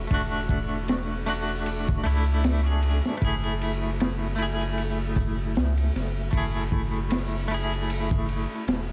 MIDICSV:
0, 0, Header, 1, 4, 480
1, 0, Start_track
1, 0, Key_signature, 3, "minor"
1, 0, Tempo, 779221
1, 64, Time_signature, 4, 2, 24, 8
1, 5497, End_track
2, 0, Start_track
2, 0, Title_t, "Clean electric guitar"
2, 0, Program_c, 0, 27
2, 45, Note_on_c, 0, 57, 81
2, 66, Note_on_c, 0, 62, 70
2, 86, Note_on_c, 0, 66, 87
2, 749, Note_off_c, 0, 57, 0
2, 760, Note_off_c, 0, 62, 0
2, 769, Note_off_c, 0, 66, 0
2, 777, Note_on_c, 0, 57, 75
2, 786, Note_on_c, 0, 62, 73
2, 798, Note_on_c, 0, 66, 91
2, 1239, Note_off_c, 0, 57, 0
2, 1244, Note_off_c, 0, 62, 0
2, 1250, Note_off_c, 0, 66, 0
2, 1254, Note_on_c, 0, 57, 86
2, 1262, Note_on_c, 0, 62, 78
2, 1271, Note_on_c, 0, 64, 89
2, 1601, Note_off_c, 0, 57, 0
2, 1605, Note_off_c, 0, 62, 0
2, 1609, Note_off_c, 0, 64, 0
2, 1623, Note_on_c, 0, 57, 63
2, 1632, Note_on_c, 0, 62, 58
2, 1641, Note_on_c, 0, 68, 67
2, 1948, Note_off_c, 0, 57, 0
2, 1956, Note_off_c, 0, 62, 0
2, 1956, Note_on_c, 0, 57, 84
2, 1960, Note_off_c, 0, 68, 0
2, 1978, Note_on_c, 0, 64, 74
2, 2000, Note_on_c, 0, 68, 94
2, 2664, Note_off_c, 0, 57, 0
2, 2676, Note_off_c, 0, 64, 0
2, 2683, Note_on_c, 0, 57, 78
2, 2687, Note_off_c, 0, 68, 0
2, 2701, Note_on_c, 0, 64, 75
2, 2725, Note_on_c, 0, 68, 85
2, 3868, Note_off_c, 0, 57, 0
2, 3877, Note_off_c, 0, 64, 0
2, 3887, Note_on_c, 0, 57, 81
2, 3889, Note_off_c, 0, 68, 0
2, 3909, Note_on_c, 0, 64, 70
2, 3927, Note_on_c, 0, 68, 86
2, 4590, Note_off_c, 0, 57, 0
2, 4601, Note_off_c, 0, 64, 0
2, 4608, Note_on_c, 0, 57, 83
2, 4610, Note_off_c, 0, 68, 0
2, 4629, Note_on_c, 0, 64, 72
2, 4647, Note_on_c, 0, 68, 89
2, 5497, Note_off_c, 0, 57, 0
2, 5497, Note_off_c, 0, 64, 0
2, 5497, Note_off_c, 0, 68, 0
2, 5497, End_track
3, 0, Start_track
3, 0, Title_t, "Sub bass"
3, 0, Program_c, 1, 38
3, 66, Note_on_c, 1, 28, 88
3, 1261, Note_off_c, 1, 28, 0
3, 1265, Note_on_c, 1, 37, 94
3, 1852, Note_off_c, 1, 37, 0
3, 1982, Note_on_c, 1, 30, 86
3, 3423, Note_on_c, 1, 37, 84
3, 3432, Note_off_c, 1, 30, 0
3, 3638, Note_off_c, 1, 37, 0
3, 3665, Note_on_c, 1, 30, 80
3, 3879, Note_off_c, 1, 30, 0
3, 3899, Note_on_c, 1, 30, 92
3, 5210, Note_off_c, 1, 30, 0
3, 5342, Note_on_c, 1, 28, 98
3, 5497, Note_off_c, 1, 28, 0
3, 5497, End_track
4, 0, Start_track
4, 0, Title_t, "Drums"
4, 65, Note_on_c, 9, 51, 85
4, 66, Note_on_c, 9, 36, 96
4, 126, Note_off_c, 9, 51, 0
4, 128, Note_off_c, 9, 36, 0
4, 302, Note_on_c, 9, 36, 83
4, 308, Note_on_c, 9, 51, 61
4, 364, Note_off_c, 9, 36, 0
4, 369, Note_off_c, 9, 51, 0
4, 541, Note_on_c, 9, 51, 78
4, 549, Note_on_c, 9, 38, 122
4, 603, Note_off_c, 9, 51, 0
4, 610, Note_off_c, 9, 38, 0
4, 781, Note_on_c, 9, 51, 68
4, 842, Note_off_c, 9, 51, 0
4, 917, Note_on_c, 9, 51, 38
4, 978, Note_off_c, 9, 51, 0
4, 1023, Note_on_c, 9, 51, 78
4, 1084, Note_off_c, 9, 51, 0
4, 1162, Note_on_c, 9, 36, 95
4, 1223, Note_off_c, 9, 36, 0
4, 1265, Note_on_c, 9, 51, 63
4, 1327, Note_off_c, 9, 51, 0
4, 1503, Note_on_c, 9, 51, 83
4, 1507, Note_on_c, 9, 38, 115
4, 1565, Note_off_c, 9, 51, 0
4, 1569, Note_off_c, 9, 38, 0
4, 1742, Note_on_c, 9, 51, 56
4, 1803, Note_off_c, 9, 51, 0
4, 1883, Note_on_c, 9, 38, 47
4, 1945, Note_off_c, 9, 38, 0
4, 1982, Note_on_c, 9, 51, 76
4, 1983, Note_on_c, 9, 36, 98
4, 2044, Note_off_c, 9, 51, 0
4, 2045, Note_off_c, 9, 36, 0
4, 2117, Note_on_c, 9, 51, 39
4, 2178, Note_off_c, 9, 51, 0
4, 2226, Note_on_c, 9, 51, 67
4, 2288, Note_off_c, 9, 51, 0
4, 2463, Note_on_c, 9, 51, 83
4, 2472, Note_on_c, 9, 38, 104
4, 2525, Note_off_c, 9, 51, 0
4, 2534, Note_off_c, 9, 38, 0
4, 2706, Note_on_c, 9, 51, 60
4, 2768, Note_off_c, 9, 51, 0
4, 2839, Note_on_c, 9, 51, 43
4, 2901, Note_off_c, 9, 51, 0
4, 2944, Note_on_c, 9, 51, 74
4, 3005, Note_off_c, 9, 51, 0
4, 3181, Note_on_c, 9, 36, 87
4, 3181, Note_on_c, 9, 51, 68
4, 3242, Note_off_c, 9, 51, 0
4, 3243, Note_off_c, 9, 36, 0
4, 3420, Note_on_c, 9, 46, 72
4, 3432, Note_on_c, 9, 38, 116
4, 3482, Note_off_c, 9, 46, 0
4, 3493, Note_off_c, 9, 38, 0
4, 3556, Note_on_c, 9, 51, 46
4, 3618, Note_off_c, 9, 51, 0
4, 3670, Note_on_c, 9, 51, 59
4, 3671, Note_on_c, 9, 38, 35
4, 3732, Note_off_c, 9, 38, 0
4, 3732, Note_off_c, 9, 51, 0
4, 3899, Note_on_c, 9, 36, 90
4, 3901, Note_on_c, 9, 51, 84
4, 3960, Note_off_c, 9, 36, 0
4, 3962, Note_off_c, 9, 51, 0
4, 4141, Note_on_c, 9, 36, 85
4, 4144, Note_on_c, 9, 51, 61
4, 4203, Note_off_c, 9, 36, 0
4, 4205, Note_off_c, 9, 51, 0
4, 4378, Note_on_c, 9, 51, 94
4, 4387, Note_on_c, 9, 38, 97
4, 4439, Note_off_c, 9, 51, 0
4, 4449, Note_off_c, 9, 38, 0
4, 4624, Note_on_c, 9, 51, 63
4, 4686, Note_off_c, 9, 51, 0
4, 4766, Note_on_c, 9, 51, 40
4, 4828, Note_off_c, 9, 51, 0
4, 4865, Note_on_c, 9, 51, 81
4, 4926, Note_off_c, 9, 51, 0
4, 4997, Note_on_c, 9, 36, 97
4, 5058, Note_off_c, 9, 36, 0
4, 5105, Note_on_c, 9, 51, 63
4, 5167, Note_off_c, 9, 51, 0
4, 5347, Note_on_c, 9, 51, 86
4, 5352, Note_on_c, 9, 38, 106
4, 5409, Note_off_c, 9, 51, 0
4, 5413, Note_off_c, 9, 38, 0
4, 5497, End_track
0, 0, End_of_file